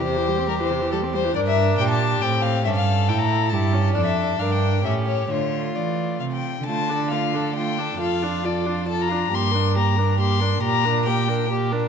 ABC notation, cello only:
X:1
M:3/4
L:1/8
Q:1/4=137
K:Cmix
V:1 name="Cello" clef=bass
E,,6 | [K:Dm] G,,2 B,,2 A,,2 | G,,2 A,,2 G,,2 | F,,2 G,,2 A,,2 |
D,2 E,2 C,2 | D,6 | F,,6 | G,,6 |
B,,6 |]